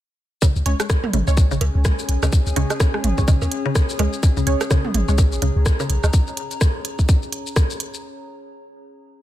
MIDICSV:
0, 0, Header, 1, 6, 480
1, 0, Start_track
1, 0, Tempo, 476190
1, 423, Time_signature, 4, 2, 24, 8
1, 9294, End_track
2, 0, Start_track
2, 0, Title_t, "Ambient pad"
2, 0, Program_c, 0, 92
2, 424, Note_on_c, 0, 61, 76
2, 742, Note_on_c, 0, 68, 75
2, 906, Note_on_c, 0, 80, 77
2, 1284, Note_on_c, 0, 73, 84
2, 4946, Note_on_c, 0, 82, 83
2, 5098, Note_off_c, 0, 80, 0
2, 8103, Note_off_c, 0, 68, 0
2, 8103, Note_off_c, 0, 73, 0
2, 8104, Note_off_c, 0, 61, 0
2, 8104, Note_off_c, 0, 82, 0
2, 9294, End_track
3, 0, Start_track
3, 0, Title_t, "Synth stab"
3, 0, Program_c, 1, 62
3, 663, Note_on_c, 1, 56, 101
3, 663, Note_on_c, 1, 61, 93
3, 663, Note_on_c, 1, 73, 110
3, 742, Note_off_c, 1, 56, 0
3, 742, Note_off_c, 1, 61, 0
3, 742, Note_off_c, 1, 73, 0
3, 1284, Note_on_c, 1, 56, 88
3, 1284, Note_on_c, 1, 61, 85
3, 1284, Note_on_c, 1, 73, 103
3, 1373, Note_off_c, 1, 56, 0
3, 1373, Note_off_c, 1, 61, 0
3, 1373, Note_off_c, 1, 73, 0
3, 2584, Note_on_c, 1, 56, 101
3, 2584, Note_on_c, 1, 61, 95
3, 2584, Note_on_c, 1, 73, 108
3, 2663, Note_off_c, 1, 56, 0
3, 2663, Note_off_c, 1, 61, 0
3, 2663, Note_off_c, 1, 73, 0
3, 3204, Note_on_c, 1, 73, 100
3, 3205, Note_on_c, 1, 56, 89
3, 3205, Note_on_c, 1, 61, 80
3, 3260, Note_off_c, 1, 56, 0
3, 3260, Note_off_c, 1, 61, 0
3, 3260, Note_off_c, 1, 73, 0
3, 4503, Note_on_c, 1, 56, 101
3, 4504, Note_on_c, 1, 61, 91
3, 4504, Note_on_c, 1, 73, 109
3, 4582, Note_off_c, 1, 56, 0
3, 4582, Note_off_c, 1, 73, 0
3, 4583, Note_off_c, 1, 61, 0
3, 5124, Note_on_c, 1, 56, 90
3, 5124, Note_on_c, 1, 61, 86
3, 5124, Note_on_c, 1, 73, 105
3, 5213, Note_off_c, 1, 56, 0
3, 5213, Note_off_c, 1, 61, 0
3, 5213, Note_off_c, 1, 73, 0
3, 9294, End_track
4, 0, Start_track
4, 0, Title_t, "Synth arpeggio sound"
4, 0, Program_c, 2, 84
4, 423, Note_on_c, 2, 49, 107
4, 461, Note_off_c, 2, 49, 0
4, 805, Note_on_c, 2, 56, 76
4, 825, Note_off_c, 2, 56, 0
4, 1144, Note_on_c, 2, 49, 76
4, 1182, Note_off_c, 2, 49, 0
4, 1525, Note_on_c, 2, 49, 106
4, 1551, Note_off_c, 2, 49, 0
4, 1864, Note_on_c, 2, 56, 88
4, 1886, Note_off_c, 2, 56, 0
4, 2245, Note_on_c, 2, 49, 77
4, 2271, Note_off_c, 2, 49, 0
4, 2584, Note_on_c, 2, 49, 105
4, 2622, Note_off_c, 2, 49, 0
4, 2965, Note_on_c, 2, 56, 76
4, 2985, Note_off_c, 2, 56, 0
4, 3304, Note_on_c, 2, 49, 85
4, 3342, Note_off_c, 2, 49, 0
4, 3685, Note_on_c, 2, 49, 108
4, 3711, Note_off_c, 2, 49, 0
4, 4024, Note_on_c, 2, 56, 78
4, 4046, Note_off_c, 2, 56, 0
4, 4405, Note_on_c, 2, 49, 82
4, 4431, Note_off_c, 2, 49, 0
4, 4744, Note_on_c, 2, 49, 102
4, 4782, Note_off_c, 2, 49, 0
4, 5125, Note_on_c, 2, 56, 78
4, 5145, Note_off_c, 2, 56, 0
4, 5464, Note_on_c, 2, 49, 78
4, 5502, Note_off_c, 2, 49, 0
4, 5845, Note_on_c, 2, 49, 99
4, 5871, Note_off_c, 2, 49, 0
4, 9294, End_track
5, 0, Start_track
5, 0, Title_t, "Sub bass"
5, 0, Program_c, 3, 38
5, 564, Note_on_c, 3, 37, 99
5, 624, Note_off_c, 3, 37, 0
5, 663, Note_on_c, 3, 37, 86
5, 749, Note_off_c, 3, 37, 0
5, 1143, Note_on_c, 3, 32, 79
5, 1229, Note_off_c, 3, 32, 0
5, 1284, Note_on_c, 3, 37, 89
5, 1524, Note_on_c, 3, 32, 94
5, 1539, Note_off_c, 3, 37, 0
5, 1585, Note_off_c, 3, 32, 0
5, 1623, Note_on_c, 3, 37, 101
5, 1709, Note_off_c, 3, 37, 0
5, 1764, Note_on_c, 3, 37, 96
5, 1894, Note_off_c, 3, 37, 0
5, 2103, Note_on_c, 3, 35, 84
5, 2189, Note_off_c, 3, 35, 0
5, 2244, Note_on_c, 3, 37, 100
5, 2304, Note_off_c, 3, 37, 0
5, 2484, Note_on_c, 3, 37, 103
5, 2544, Note_off_c, 3, 37, 0
5, 2583, Note_on_c, 3, 37, 86
5, 2669, Note_off_c, 3, 37, 0
5, 3063, Note_on_c, 3, 32, 78
5, 3149, Note_off_c, 3, 32, 0
5, 3204, Note_on_c, 3, 37, 88
5, 3265, Note_off_c, 3, 37, 0
5, 3444, Note_on_c, 3, 39, 87
5, 3505, Note_off_c, 3, 39, 0
5, 4023, Note_on_c, 3, 37, 90
5, 4109, Note_off_c, 3, 37, 0
5, 4404, Note_on_c, 3, 37, 101
5, 4465, Note_off_c, 3, 37, 0
5, 4504, Note_on_c, 3, 37, 86
5, 4589, Note_off_c, 3, 37, 0
5, 4983, Note_on_c, 3, 32, 80
5, 5069, Note_off_c, 3, 32, 0
5, 5124, Note_on_c, 3, 37, 90
5, 5365, Note_on_c, 3, 32, 87
5, 5380, Note_off_c, 3, 37, 0
5, 5425, Note_off_c, 3, 32, 0
5, 5463, Note_on_c, 3, 37, 101
5, 5549, Note_off_c, 3, 37, 0
5, 5605, Note_on_c, 3, 37, 101
5, 5734, Note_off_c, 3, 37, 0
5, 5943, Note_on_c, 3, 35, 83
5, 6029, Note_off_c, 3, 35, 0
5, 6084, Note_on_c, 3, 37, 101
5, 6144, Note_off_c, 3, 37, 0
5, 9294, End_track
6, 0, Start_track
6, 0, Title_t, "Drums"
6, 423, Note_on_c, 9, 56, 63
6, 423, Note_on_c, 9, 82, 68
6, 424, Note_on_c, 9, 36, 114
6, 524, Note_off_c, 9, 36, 0
6, 524, Note_off_c, 9, 56, 0
6, 524, Note_off_c, 9, 82, 0
6, 564, Note_on_c, 9, 82, 31
6, 663, Note_on_c, 9, 42, 93
6, 665, Note_off_c, 9, 82, 0
6, 764, Note_off_c, 9, 42, 0
6, 804, Note_on_c, 9, 37, 71
6, 804, Note_on_c, 9, 42, 37
6, 804, Note_on_c, 9, 82, 31
6, 903, Note_off_c, 9, 37, 0
6, 903, Note_off_c, 9, 82, 0
6, 903, Note_on_c, 9, 37, 96
6, 903, Note_on_c, 9, 82, 64
6, 904, Note_on_c, 9, 36, 122
6, 905, Note_off_c, 9, 42, 0
6, 1004, Note_off_c, 9, 36, 0
6, 1004, Note_off_c, 9, 37, 0
6, 1004, Note_off_c, 9, 82, 0
6, 1044, Note_on_c, 9, 47, 88
6, 1044, Note_on_c, 9, 56, 63
6, 1143, Note_off_c, 9, 47, 0
6, 1143, Note_on_c, 9, 42, 96
6, 1143, Note_on_c, 9, 47, 79
6, 1145, Note_off_c, 9, 56, 0
6, 1244, Note_off_c, 9, 42, 0
6, 1244, Note_off_c, 9, 47, 0
6, 1285, Note_on_c, 9, 82, 32
6, 1384, Note_off_c, 9, 82, 0
6, 1384, Note_on_c, 9, 36, 127
6, 1384, Note_on_c, 9, 82, 67
6, 1484, Note_off_c, 9, 36, 0
6, 1484, Note_off_c, 9, 82, 0
6, 1524, Note_on_c, 9, 82, 30
6, 1623, Note_on_c, 9, 42, 93
6, 1623, Note_on_c, 9, 56, 63
6, 1625, Note_off_c, 9, 82, 0
6, 1724, Note_off_c, 9, 42, 0
6, 1724, Note_off_c, 9, 56, 0
6, 1863, Note_on_c, 9, 37, 97
6, 1863, Note_on_c, 9, 82, 69
6, 1864, Note_on_c, 9, 36, 127
6, 1964, Note_off_c, 9, 36, 0
6, 1964, Note_off_c, 9, 37, 0
6, 1964, Note_off_c, 9, 82, 0
6, 2004, Note_on_c, 9, 82, 45
6, 2103, Note_on_c, 9, 42, 97
6, 2105, Note_off_c, 9, 82, 0
6, 2204, Note_off_c, 9, 42, 0
6, 2245, Note_on_c, 9, 37, 70
6, 2245, Note_on_c, 9, 56, 70
6, 2245, Note_on_c, 9, 77, 78
6, 2245, Note_on_c, 9, 82, 46
6, 2343, Note_off_c, 9, 82, 0
6, 2343, Note_on_c, 9, 82, 65
6, 2344, Note_on_c, 9, 36, 126
6, 2345, Note_off_c, 9, 37, 0
6, 2345, Note_off_c, 9, 56, 0
6, 2345, Note_off_c, 9, 77, 0
6, 2444, Note_off_c, 9, 82, 0
6, 2445, Note_off_c, 9, 36, 0
6, 2485, Note_on_c, 9, 82, 32
6, 2584, Note_on_c, 9, 42, 97
6, 2585, Note_off_c, 9, 82, 0
6, 2684, Note_off_c, 9, 42, 0
6, 2724, Note_on_c, 9, 42, 37
6, 2724, Note_on_c, 9, 82, 29
6, 2725, Note_on_c, 9, 37, 67
6, 2725, Note_on_c, 9, 77, 75
6, 2823, Note_on_c, 9, 56, 63
6, 2824, Note_off_c, 9, 37, 0
6, 2824, Note_off_c, 9, 82, 0
6, 2824, Note_on_c, 9, 36, 127
6, 2824, Note_on_c, 9, 37, 95
6, 2824, Note_on_c, 9, 82, 61
6, 2825, Note_off_c, 9, 42, 0
6, 2825, Note_off_c, 9, 77, 0
6, 2924, Note_off_c, 9, 37, 0
6, 2924, Note_off_c, 9, 56, 0
6, 2924, Note_off_c, 9, 82, 0
6, 2925, Note_off_c, 9, 36, 0
6, 2965, Note_on_c, 9, 37, 60
6, 3064, Note_on_c, 9, 42, 101
6, 3064, Note_on_c, 9, 47, 82
6, 3065, Note_off_c, 9, 37, 0
6, 3165, Note_off_c, 9, 42, 0
6, 3165, Note_off_c, 9, 47, 0
6, 3204, Note_on_c, 9, 82, 30
6, 3205, Note_on_c, 9, 36, 65
6, 3303, Note_off_c, 9, 82, 0
6, 3303, Note_on_c, 9, 77, 79
6, 3303, Note_on_c, 9, 82, 63
6, 3304, Note_off_c, 9, 36, 0
6, 3304, Note_on_c, 9, 36, 127
6, 3404, Note_off_c, 9, 77, 0
6, 3404, Note_off_c, 9, 82, 0
6, 3405, Note_off_c, 9, 36, 0
6, 3445, Note_on_c, 9, 56, 63
6, 3445, Note_on_c, 9, 82, 29
6, 3543, Note_on_c, 9, 42, 98
6, 3545, Note_off_c, 9, 56, 0
6, 3545, Note_off_c, 9, 82, 0
6, 3644, Note_off_c, 9, 42, 0
6, 3783, Note_on_c, 9, 37, 98
6, 3783, Note_on_c, 9, 82, 66
6, 3784, Note_on_c, 9, 36, 127
6, 3884, Note_off_c, 9, 36, 0
6, 3884, Note_off_c, 9, 37, 0
6, 3884, Note_off_c, 9, 82, 0
6, 3925, Note_on_c, 9, 82, 42
6, 4024, Note_on_c, 9, 42, 102
6, 4024, Note_on_c, 9, 56, 63
6, 4024, Note_on_c, 9, 77, 73
6, 4025, Note_off_c, 9, 82, 0
6, 4124, Note_off_c, 9, 42, 0
6, 4125, Note_off_c, 9, 56, 0
6, 4125, Note_off_c, 9, 77, 0
6, 4164, Note_on_c, 9, 82, 42
6, 4264, Note_off_c, 9, 82, 0
6, 4264, Note_on_c, 9, 36, 125
6, 4264, Note_on_c, 9, 82, 62
6, 4364, Note_off_c, 9, 36, 0
6, 4364, Note_off_c, 9, 82, 0
6, 4404, Note_on_c, 9, 82, 30
6, 4503, Note_on_c, 9, 42, 95
6, 4505, Note_off_c, 9, 82, 0
6, 4604, Note_off_c, 9, 42, 0
6, 4645, Note_on_c, 9, 37, 65
6, 4645, Note_on_c, 9, 42, 39
6, 4645, Note_on_c, 9, 56, 64
6, 4645, Note_on_c, 9, 82, 29
6, 4744, Note_off_c, 9, 37, 0
6, 4744, Note_off_c, 9, 82, 0
6, 4744, Note_on_c, 9, 36, 127
6, 4744, Note_on_c, 9, 37, 92
6, 4744, Note_on_c, 9, 82, 60
6, 4746, Note_off_c, 9, 42, 0
6, 4746, Note_off_c, 9, 56, 0
6, 4844, Note_off_c, 9, 36, 0
6, 4845, Note_off_c, 9, 37, 0
6, 4845, Note_off_c, 9, 82, 0
6, 4885, Note_on_c, 9, 47, 86
6, 4983, Note_off_c, 9, 47, 0
6, 4983, Note_on_c, 9, 47, 82
6, 4984, Note_on_c, 9, 42, 98
6, 5084, Note_off_c, 9, 42, 0
6, 5084, Note_off_c, 9, 47, 0
6, 5125, Note_on_c, 9, 82, 29
6, 5223, Note_off_c, 9, 82, 0
6, 5223, Note_on_c, 9, 82, 64
6, 5224, Note_on_c, 9, 36, 127
6, 5224, Note_on_c, 9, 56, 61
6, 5324, Note_off_c, 9, 36, 0
6, 5324, Note_off_c, 9, 56, 0
6, 5324, Note_off_c, 9, 82, 0
6, 5365, Note_on_c, 9, 82, 29
6, 5463, Note_on_c, 9, 42, 99
6, 5466, Note_off_c, 9, 82, 0
6, 5564, Note_off_c, 9, 42, 0
6, 5703, Note_on_c, 9, 37, 99
6, 5703, Note_on_c, 9, 82, 61
6, 5704, Note_on_c, 9, 36, 127
6, 5804, Note_off_c, 9, 36, 0
6, 5804, Note_off_c, 9, 37, 0
6, 5804, Note_off_c, 9, 82, 0
6, 5844, Note_on_c, 9, 56, 61
6, 5844, Note_on_c, 9, 82, 43
6, 5943, Note_on_c, 9, 42, 104
6, 5945, Note_off_c, 9, 56, 0
6, 5945, Note_off_c, 9, 82, 0
6, 6044, Note_off_c, 9, 42, 0
6, 6084, Note_on_c, 9, 37, 67
6, 6084, Note_on_c, 9, 77, 83
6, 6084, Note_on_c, 9, 82, 42
6, 6183, Note_off_c, 9, 82, 0
6, 6183, Note_on_c, 9, 82, 63
6, 6184, Note_on_c, 9, 36, 124
6, 6185, Note_off_c, 9, 37, 0
6, 6185, Note_off_c, 9, 77, 0
6, 6284, Note_off_c, 9, 36, 0
6, 6284, Note_off_c, 9, 82, 0
6, 6324, Note_on_c, 9, 82, 29
6, 6423, Note_on_c, 9, 42, 93
6, 6425, Note_off_c, 9, 82, 0
6, 6523, Note_off_c, 9, 42, 0
6, 6564, Note_on_c, 9, 42, 37
6, 6564, Note_on_c, 9, 82, 28
6, 6663, Note_off_c, 9, 82, 0
6, 6663, Note_on_c, 9, 37, 89
6, 6663, Note_on_c, 9, 82, 59
6, 6664, Note_off_c, 9, 42, 0
6, 6664, Note_on_c, 9, 36, 127
6, 6764, Note_off_c, 9, 36, 0
6, 6764, Note_off_c, 9, 37, 0
6, 6764, Note_off_c, 9, 82, 0
6, 6903, Note_on_c, 9, 42, 102
6, 7003, Note_off_c, 9, 42, 0
6, 7044, Note_on_c, 9, 82, 30
6, 7045, Note_on_c, 9, 36, 62
6, 7143, Note_off_c, 9, 36, 0
6, 7143, Note_off_c, 9, 82, 0
6, 7143, Note_on_c, 9, 36, 127
6, 7143, Note_on_c, 9, 82, 63
6, 7244, Note_off_c, 9, 36, 0
6, 7244, Note_off_c, 9, 82, 0
6, 7284, Note_on_c, 9, 82, 27
6, 7383, Note_on_c, 9, 42, 97
6, 7385, Note_off_c, 9, 82, 0
6, 7484, Note_off_c, 9, 42, 0
6, 7525, Note_on_c, 9, 82, 29
6, 7623, Note_off_c, 9, 82, 0
6, 7623, Note_on_c, 9, 37, 93
6, 7623, Note_on_c, 9, 82, 61
6, 7624, Note_on_c, 9, 36, 127
6, 7724, Note_off_c, 9, 36, 0
6, 7724, Note_off_c, 9, 37, 0
6, 7724, Note_off_c, 9, 82, 0
6, 7765, Note_on_c, 9, 82, 42
6, 7863, Note_on_c, 9, 42, 103
6, 7865, Note_off_c, 9, 82, 0
6, 7964, Note_off_c, 9, 42, 0
6, 8004, Note_on_c, 9, 82, 42
6, 8105, Note_off_c, 9, 82, 0
6, 9294, End_track
0, 0, End_of_file